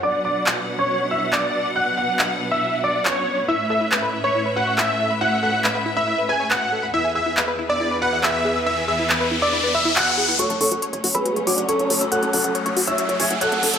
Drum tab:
HH |----------------|----------------|----------------|----------------|
CP |----x-------x---|----x-------x---|----x-------x---|----x-------x---|

HH |----------------|----------------|xxoxxxoxxxoxxxox|xxoxxxoxxxoxxxox|
CP |----x-------x---|----x-------x---|----------------|----------------|